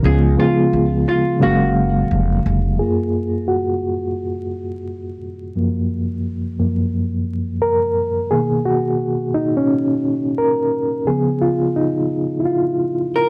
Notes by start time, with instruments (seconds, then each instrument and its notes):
0.03 upright bass C#2, reed electric piano C#3 F3 G#3 B3 F4, hollow-body jazz guitar G#4
0.36 reed electric piano C#3 F3 G#3 B3 G#4, hollow-body jazz guitar F4
0.73 upright bass C#2
1.09 hollow-body jazz guitar F4
1.40 upright bass F#1, reed electric piano C#3 F#3 G#3 A#3 F5, hollow-body jazz guitar F#4
2.11 upright bass F1
2.46 upright bass F1
2.79 reed electric piano F#2 A#3 F4 G#4
3.48 reed electric piano F#4
5.55 reed electric piano F#2 F3 A#3
6.59 reed electric piano F#2 F3 A#3
7.62 reed electric piano A#4
8.31 reed electric piano B2 D#3 A#3 G#4
8.65 reed electric piano F#4
9.34 reed electric piano D#4
9.57 reed electric piano C#4
10.38 reed electric piano A#4
11.07 reed electric piano C#3 F3 B3 G#4
11.42 reed electric piano F4
11.76 reed electric piano D#4
12.40 reed electric piano E4
12.45 reed electric piano F4
13.16 hollow-body jazz guitar A#4